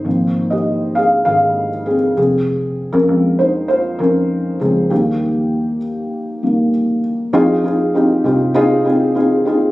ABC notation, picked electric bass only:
X:1
M:4/4
L:1/16
Q:1/4=99
K:Fm
V:1 name="Picked electric bass" clef=bass
A,,,8 A,,,6 F,,,2- | F,,,3 F,, F,,6 F,,4 D,,2 | E,,8 z8 | F,,6 C,,8 z2 |]